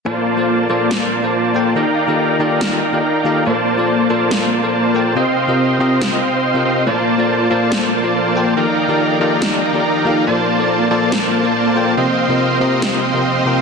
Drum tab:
SD |----o---|----o---|----o---|----o---|

SD |----o---|----o---|----o---|----o---|